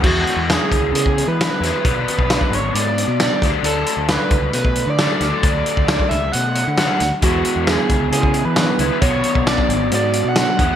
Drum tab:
CC |x---------------|----------------|----------------|----------------|
HH |--x-x-x-x-x-x-x-|x-x-x-x-x-x-x-x-|x-x-x-x-x-x-x-x-|x-x-x-x-x-x-x-x-|
SD |----o-------o-o-|----o-------o-o-|----o-------o-o-|----o-------o-o-|
BD |o-----o--o------|o--o-o--------o-|------o--o------|o--o-o----------|

CC |----------------|----------------|
HH |x-x-x-x-x-x-x-x-|x-x-x-x-x-x-x-x-|
SD |----o-------o---|----o-------o---|
BD |o-----o--o------|o--o-o--------o-|